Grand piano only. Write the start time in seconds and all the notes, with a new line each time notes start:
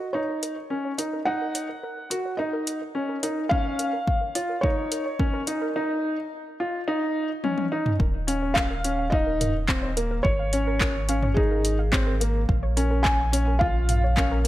0.14 D#4
0.70 C#4
0.98 D#4
1.26 D#4
2.10 F#4
2.39 D#4
2.95 C#4
3.23 D#4
3.51 C#4
4.35 F4
4.63 D#4
5.20 C#4
5.47 D#4
5.76 D#4
6.60 F4
6.88 D#4
7.44 C#4
7.72 D#4
8.27 C#4
8.84 C#4
9.13 D#4
9.68 C4
9.97 A#3
10.53 C#4
11.09 C#4
11.37 D#4
11.92 C4
12.20 A#3
12.77 C#4
13.32 C#4
13.61 F4
14.17 C#4
14.44 A#3